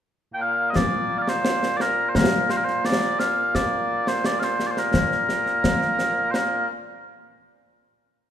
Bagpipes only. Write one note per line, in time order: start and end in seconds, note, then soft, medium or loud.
0.34 6.67 A#2 medium
0.34 6.67 A#3 medium
0.34 0.42 G5 medium
0.42 0.70 F5 medium
0.70 0.76 D#5 medium
0.76 1.18 D5 loud
1.18 1.29 D5 medium
1.18 1.22 F5 medium
1.29 1.77 C5 medium
1.77 1.81 D5 medium
1.81 2.09 A#4 medium
2.09 2.16 C5 medium
2.16 2.50 A#4 medium
2.50 2.57 C5 medium
2.57 2.64 A#4 medium
2.64 2.85 C5 medium
2.85 3.19 D5 medium
3.19 3.55 F5 medium
3.55 4.08 D5 medium
4.08 4.26 C5 medium
4.26 4.39 D5 medium
4.39 4.44 F5 medium
4.44 4.67 C5 medium
4.67 4.71 D5 medium
4.71 4.78 C5 medium
4.78 6.31 A#4 medium
6.31 6.35 C5 medium
6.35 6.67 A#4 medium